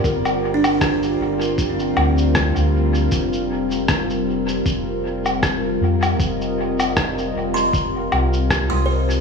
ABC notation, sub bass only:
X:1
M:4/4
L:1/16
Q:"Swing 16ths" 1/4=78
K:Fmix
V:1 name="Sub bass" clef=bass
G,,,6 G,,,4 D,,3 D,,3 | F,,,8 F,,,6 F,,2 | F,,,6 F,,,4 C,,3 C,,3 |]